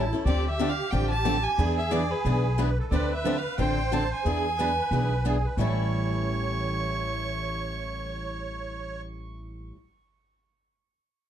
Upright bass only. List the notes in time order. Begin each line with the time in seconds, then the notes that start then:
Already playing: A1
0.25 D2
0.93 A1
1.58 E2
2.25 B1
2.91 D2
3.58 A1
4.25 E2
4.91 B1
5.57 A1